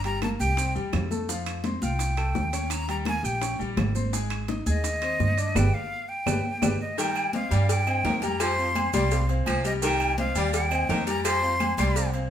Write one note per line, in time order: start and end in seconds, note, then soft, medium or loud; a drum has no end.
0.00 0.34 G1 medium
0.04 0.19 G3 medium
0.04 0.19 G4 medium
0.04 0.20 G5 medium
0.04 0.22 A#5 loud
0.04 high bongo soft
0.04 high conga soft
0.04 high timbale medium
0.04 maracas soft
0.22 0.37 A#3 medium
0.22 0.37 A#4 medium
0.22 0.29 A5 medium
0.22 0.37 A#5 medium
0.22 high bongo medium
0.22 high conga medium
0.22 high timbale medium
0.22 claves medium
0.22 maracas soft
0.40 0.73 C2 medium
0.40 0.55 G4 medium
0.40 0.73 G5 medium
0.40 0.55 G5 medium
0.40 0.55 G6 medium
0.40 high conga soft
0.40 maracas medium
0.57 0.72 C4 medium
0.57 0.72 C5 medium
0.57 0.73 C6 medium
0.57 high bongo medium
0.57 high timbale medium
0.57 maracas medium
0.75 0.92 E2 medium
0.75 1.05 G3 medium
0.75 1.05 G4 medium
0.75 1.05 G5 medium
0.75 high bongo soft
0.75 high conga soft
0.75 maracas soft
0.93 1.76 F2 medium
0.93 high bongo soft
0.93 low bongo medium
0.93 high conga medium
0.93 high timbale medium
0.93 low timbale medium
0.93 claves medium
0.93 maracas soft
1.11 1.26 A3 medium
1.11 1.26 A4 medium
1.11 1.26 A5 medium
1.11 high bongo soft
1.11 high conga medium
1.11 maracas medium
1.28 1.58 F3 medium
1.28 1.58 F4 medium
1.28 1.58 F5 medium
1.28 high bongo medium
1.28 high conga soft
1.28 maracas medium
1.46 high bongo soft
1.46 high conga soft
1.46 high timbale medium
1.46 claves medium
1.46 maracas soft
1.64 1.79 C4 medium
1.64 1.79 C5 medium
1.64 1.79 C6 medium
1.64 high bongo medium
1.64 high conga medium
1.64 high timbale medium
1.64 maracas soft
1.82 2.32 C2 medium
1.82 2.11 F4 medium
1.82 2.12 F5 medium
1.82 2.73 G5 medium
1.82 2.12 F6 medium
1.82 high conga medium
1.82 maracas medium
1.99 high bongo medium
1.99 high conga soft
1.99 high timbale medium
1.99 maracas medium
2.17 2.47 A3 medium
2.17 2.47 A4 medium
2.17 2.47 A5 medium
2.17 high bongo soft
2.17 high timbale medium
2.17 claves medium
2.17 maracas soft
2.35 3.18 D#2 medium
2.35 high bongo soft
2.35 low bongo medium
2.35 high conga medium
2.35 maracas soft
2.52 2.82 C#4 medium
2.52 2.82 C#5 medium
2.52 2.82 C#6 medium
2.52 high bongo soft
2.52 high timbale medium
2.52 maracas medium
2.70 2.89 A#5 loud
2.70 high bongo medium
2.70 high conga soft
2.70 high timbale medium
2.70 claves medium
2.70 maracas medium
2.88 3.03 G3 medium
2.88 3.03 G4 medium
2.88 3.03 G5 medium
2.88 2.96 A#5 loud
2.88 high bongo soft
2.88 high timbale medium
2.88 maracas soft
3.05 3.21 A#3 medium
3.05 3.21 A#4 medium
3.05 3.27 G#5 loud
3.05 3.21 A#5 medium
3.05 high bongo medium
3.05 high conga medium
3.05 high timbale medium
3.05 claves medium
3.05 maracas soft
3.23 3.57 A#1 medium
3.23 3.38 G4 medium
3.23 3.39 G5 medium
3.23 3.60 G5 medium
3.23 3.39 G6 medium
3.23 high conga soft
3.23 maracas medium
3.41 3.56 C#4 medium
3.41 3.56 C#5 medium
3.41 3.57 C#6 medium
3.41 high bongo medium
3.41 high timbale medium
3.41 maracas medium
3.59 3.76 A#1 medium
3.59 3.89 G3 medium
3.59 3.89 G4 medium
3.59 3.89 G5 medium
3.59 high bongo soft
3.59 high conga soft
3.59 maracas soft
3.77 4.60 G#1 medium
3.77 high bongo soft
3.77 low bongo medium
3.77 high conga medium
3.77 high timbale medium
3.77 low timbale medium
3.77 claves medium
3.77 maracas soft
3.95 4.10 C4 medium
3.95 4.10 C5 medium
3.95 4.10 C6 medium
3.95 high bongo soft
3.95 high conga medium
3.95 maracas medium
4.13 4.42 G#3 medium
4.13 4.42 G#4 medium
4.13 4.42 G#5 medium
4.13 high bongo medium
4.13 high conga soft
4.13 maracas medium
4.30 high bongo soft
4.30 high conga soft
4.30 high timbale medium
4.30 claves medium
4.30 maracas soft
4.48 4.63 D#4 medium
4.48 4.63 D#5 medium
4.48 4.63 D#6 medium
4.48 high bongo medium
4.48 high conga medium
4.48 high timbale medium
4.48 maracas soft
4.66 5.16 D#2 medium
4.66 4.95 G#4 medium
4.66 5.58 D#5 loud
4.66 4.96 G#5 medium
4.66 4.96 G#6 medium
4.66 high conga medium
4.66 maracas medium
4.84 high bongo medium
4.84 high conga soft
4.84 high timbale medium
4.84 maracas medium
5.02 5.31 C4 medium
5.02 5.32 C5 medium
5.02 5.32 C6 medium
5.02 high bongo soft
5.02 high conga soft
5.02 high timbale medium
5.02 claves medium
5.02 maracas soft
5.20 5.53 G2 medium
5.20 high bongo soft
5.20 low bongo medium
5.20 high conga medium
5.20 maracas soft
5.38 5.52 D4 medium
5.38 5.52 D5 medium
5.38 5.53 D6 medium
5.38 high bongo soft
5.38 high timbale medium
5.38 maracas medium
5.55 5.68 G1 loud
5.55 5.67 G4 loud
5.55 5.67 B4 loud
5.55 5.67 D5 loud
5.55 5.76 G5 loud
5.55 low bongo loud
5.55 high conga loud
5.55 high timbale medium
5.55 claves medium
5.55 maracas medium
5.74 6.10 F5 loud
6.09 6.80 G5 loud
6.26 6.40 G1 medium
6.26 6.38 G4 medium
6.26 6.38 B4 medium
6.26 6.38 D5 medium
6.26 low bongo medium
6.26 high conga medium
6.26 high timbale loud
6.26 claves loud
6.26 maracas loud
6.62 6.75 G1 medium
6.62 6.74 G4 medium
6.62 6.74 B4 medium
6.62 6.74 D5 medium
6.62 low bongo loud
6.62 high conga medium
6.62 high timbale medium
6.62 claves loud
6.62 maracas loud
6.81 6.97 D#5 medium
6.97 7.27 D#3 medium
6.97 7.27 G3 medium
6.97 7.28 G4 medium
6.97 7.28 G5 medium
6.97 7.32 G5 medium
6.97 cowbell loud
6.97 high conga soft
6.97 low agogo medium
6.97 maracas medium
7.16 high conga soft
7.16 low agogo loud
7.16 claves medium
7.16 maracas soft
7.33 7.48 C4 medium
7.33 7.48 C5 medium
7.33 7.49 D#5 medium
7.33 7.67 F5 loud
7.33 cowbell medium
7.33 high conga loud
7.33 maracas soft
7.51 8.01 G2 medium
7.51 7.80 G3 medium
7.51 7.81 G3 medium
7.51 7.81 G4 medium
7.51 7.81 G5 medium
7.51 cowbell medium
7.51 high conga soft
7.51 low agogo medium
7.51 maracas medium
7.69 8.24 G5 loud
7.69 cowbell loud
7.69 high conga soft
7.69 low agogo medium
7.69 maracas medium
7.87 8.16 C4 medium
7.87 8.16 C5 medium
7.87 8.16 D#5 medium
7.87 high conga soft
7.87 low agogo loud
7.87 claves medium
7.87 maracas soft
8.04 8.87 F2 loud
8.04 8.23 D#3 medium
8.04 cowbell medium
8.04 high conga medium
8.04 low timbale medium
8.04 maracas soft
8.22 8.52 G3 medium
8.22 8.52 G4 medium
8.22 8.52 G5 medium
8.22 8.42 A#5 loud
8.22 cowbell medium
8.22 high conga medium
8.22 low agogo medium
8.22 maracas medium
8.40 8.69 F3 medium
8.40 8.93 C6 loud
8.40 cowbell loud
8.40 high conga soft
8.40 low agogo loud
8.40 claves medium
8.40 maracas medium
8.58 8.87 C4 medium
8.58 8.88 C5 medium
8.58 8.88 F5 medium
8.58 high conga soft
8.58 maracas soft
8.75 cowbell medium
8.75 high conga medium
8.75 low agogo loud
8.75 claves medium
8.75 maracas soft
8.93 9.43 C2 loud
8.93 9.23 G3 medium
8.93 9.08 G3 loud
8.93 9.08 G4 medium
8.93 9.09 G5 loud
8.93 9.26 C6 loud
8.93 cowbell medium
8.93 high conga medium
8.93 low agogo medium
8.93 maracas medium
9.11 9.26 C4 medium
9.11 9.26 C5 medium
9.11 9.26 F5 medium
9.11 cowbell loud
9.11 high conga soft
9.11 maracas medium
9.29 9.58 C4 medium
9.29 9.58 C5 medium
9.29 9.59 F5 medium
9.29 high conga soft
9.29 low agogo medium
9.29 maracas soft
9.46 10.30 C2 medium
9.46 9.65 F3 medium
9.46 cowbell medium
9.46 high conga medium
9.46 low agogo loud
9.46 claves medium
9.46 maracas soft
9.64 9.79 G3 medium
9.64 9.79 G4 medium
9.64 9.72 D#5 medium
9.64 9.79 G5 medium
9.64 cowbell medium
9.64 high conga soft
9.64 maracas medium
9.81 10.11 D#3 loud
9.81 10.11 G3 medium
9.81 10.11 G4 medium
9.81 10.11 G5 medium
9.81 10.16 G5 medium
9.81 cowbell loud
9.81 high conga soft
9.81 low agogo medium
9.81 maracas loud
10.00 high conga soft
10.00 low agogo loud
10.00 claves medium
10.00 maracas soft
10.18 10.32 C4 medium
10.18 10.33 C5 medium
10.18 10.33 D#5 medium
10.18 10.51 F5 loud
10.18 cowbell medium
10.18 high conga loud
10.18 maracas soft
10.35 10.85 D#2 loud
10.35 10.65 G3 loud
10.35 10.65 G3 medium
10.35 10.65 G4 loud
10.35 10.65 G5 loud
10.35 cowbell medium
10.35 low agogo medium
10.35 maracas medium
10.53 11.04 G5 loud
10.53 cowbell loud
10.53 low agogo medium
10.53 maracas loud
10.71 11.00 C4 medium
10.71 11.00 C5 medium
10.71 11.01 D#5 medium
10.71 high conga soft
10.71 low agogo loud
10.71 claves medium
10.71 maracas soft
10.89 11.72 F2 loud
10.89 11.08 D#3 medium
10.89 cowbell medium
10.89 high conga medium
10.89 low timbale medium
10.89 maracas soft
11.07 11.36 G3 medium
11.07 11.36 G4 medium
11.07 11.36 G5 medium
11.07 11.24 A#5 loud
11.07 cowbell medium
11.07 low agogo medium
11.07 maracas medium
11.25 11.54 F3 medium
11.25 11.74 C6 loud
11.25 cowbell loud
11.25 high conga soft
11.25 low agogo loud
11.25 claves medium
11.25 maracas medium
11.42 11.72 C4 medium
11.42 11.72 C5 medium
11.42 11.72 F5 medium
11.42 high conga soft
11.42 maracas soft
11.60 cowbell medium
11.60 high conga loud
11.60 low agogo loud
11.60 claves medium
11.60 maracas soft
11.78 12.27 C2 medium
11.78 11.93 G3 medium
11.78 12.08 G3 medium
11.78 11.93 G4 loud
11.78 11.93 G5 medium
11.78 12.11 C6 loud
11.78 cowbell medium
11.78 high conga loud
11.78 low agogo medium
11.78 maracas medium
11.96 12.10 C4 medium
11.96 12.11 C5 medium
11.96 12.11 F5 medium
11.96 cowbell loud
11.96 high conga soft
11.96 maracas medium
12.14 12.30 C4 medium
12.14 12.30 C5 medium
12.14 12.30 F5 medium
12.14 high conga soft
12.14 low agogo medium
12.14 maracas soft